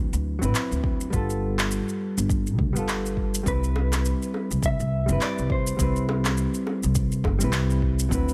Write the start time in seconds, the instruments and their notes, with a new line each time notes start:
Already playing: hollow-body jazz guitar F#3 C4 E4 B4
0.13 upright bass D2, shaker
0.39 upright bass A1, hollow-body jazz guitar F#3 C4, shaker
0.43 hollow-body jazz guitar E4 B4
0.55 clap, shaker
0.71 upright bass D2, shaker
0.84 kick
1.01 shaker
1.10 upright bass G1, hollow-body jazz guitar G3 B3 F4, kick, shaker
1.16 hollow-body jazz guitar A4
1.30 shaker
1.59 clap, shaker
1.71 shaker
1.89 shaker
2.17 upright bass G1, shaker
2.29 kick, shaker
2.47 shaker
2.59 upright bass D2, kick
2.73 upright bass G1, hollow-body jazz guitar G3 B3, shaker
2.77 hollow-body jazz guitar F4 A4
2.89 clap, shaker
3.06 shaker
3.17 kick
3.34 shaker
3.43 upright bass C2, hollow-body jazz guitar G3 C4 E4, kick, shaker
3.48 clean electric guitar B4, hollow-body jazz guitar B4
3.64 shaker
3.76 high bongo
3.92 clap, high bongo, shaker
4.05 shaker
4.22 shaker
4.34 high bongo
4.51 upright bass C2, shaker
4.62 upright bass C2, clean electric guitar E5, kick, shaker
4.80 upright bass C2, shaker
5.06 upright bass G1, hollow-body jazz guitar G3 C4 E4, shaker
5.12 hollow-body jazz guitar B4
5.21 clean electric guitar D5, clap, shaker
5.38 upright bass C2, shaker
5.50 clean electric guitar C5, kick
5.67 shaker
5.77 upright bass C2, hollow-body jazz guitar G3 C4, kick, shaker
5.81 hollow-body jazz guitar E4 B4
5.96 shaker
6.09 high bongo
6.25 clap, high bongo, shaker
6.37 shaker
6.54 shaker
6.67 high bongo
6.83 upright bass C2, shaker
6.95 kick, shaker
7.12 shaker
7.24 upright bass G1, kick, high bongo
7.39 upright bass C2, hollow-body jazz guitar G3 C4 E4, shaker
7.44 hollow-body jazz guitar B4
7.53 clap, shaker
7.70 shaker
7.82 kick
7.99 shaker
8.09 upright bass D2, hollow-body jazz guitar F#3 C4 E4, kick, shaker
8.15 hollow-body jazz guitar B4
8.29 shaker